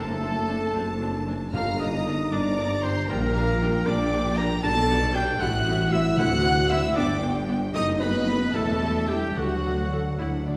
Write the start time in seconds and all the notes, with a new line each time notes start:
Already playing: F#1 F#2 A3 D4 A4 A5
0.23 A3 C4 D4
0.48 C4 D4
0.74 F#1 F#2 C4 D4 C5
1.01 C4 D4
1.27 A3 C4 D4
1.53 G1 G2 A#3 D4 F4 F5 A#5 F6
1.79 G3 A#3 D4 D#4 D#5 D#6
2.06 A#3 D4
2.31 G1 G2 A#3 D4 A#4 D5 A#5 D6
2.57 A#3 D4
2.82 G3 A#3 C4 D4 C5 C6
3.08 A#1 A#2 G3 A#3 D4 A#4 G5 A#5
3.35 G3 D4 F5
3.61 G3 D4 G5
3.85 A#1 A#2 G3 D4 D5 D6
4.13 G3 D4
4.37 G3 D4 A#4 A#5 A#6
4.63 B1 B2 G3 D4 A4 D5 A5 A6
4.89 G3 D4
5.13 G3 D4 G4 D5 G5 G6
5.39 A1 A2 C4 E4 F#4 E5 F#5 F#6
5.66 G3 C4 E4
5.92 C4 E4 C5 E5 E6
6.17 D2 D3 C4 E4 F#4 F#5 F#6
6.44 A3 C4 E4
6.69 C4 E4 C5 E5 E6
6.95 G1 G2 B3 D4 D5 G5 D6
7.22 B3 D4
7.49 B3 D4 B4
7.74 F#1 F#2 A3 D#4 D#5 D#6
8.00 A3 B3 D#4 B4 B5
8.27 A3 D#4
8.54 E1 E2 G3 A3 E4 A4 E5 A5
8.82 G3 E4
9.08 G3 E4 G4 G5
9.36 D2 D3 F#3 A3 F#4 A4 F#5
9.65 A3 A4
9.92 A3 A4
10.19 D2 F#3 E4 D5 F#5
10.47 D3 D4 A4 D5